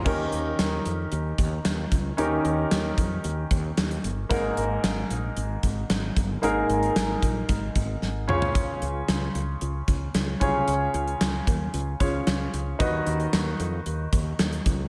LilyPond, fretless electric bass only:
\new Staff \with { instrumentName = "Fretless electric bass" } { \clef bass \time 4/4 \key ees \mixolydian \tempo 4 = 113 ees,8 ees,8 ees,8 f,8 ees,8 ees,8 ees,8 des,8 | ees,8 ees,8 ees,8 f,8 ees,8 ees,8 ees,8 g,,8 | aes,,8 aes,,8 aes,,8 bes,,8 aes,,8 aes,,8 aes,,8 g,,8 | aes,,8 aes,,8 aes,,8 bes,,8 aes,,8 aes,,8 aes,,8 des,8~ |
des,8 des,8 des,8 des,8 des,8 des,8 des,8 c,8 | des,8 des,8 des,8 ees,8 des,8 des,8 des,8 des,8 | dis,8 dis,8 dis,8 f,8 dis,8 dis,8 dis,8 des,8 | }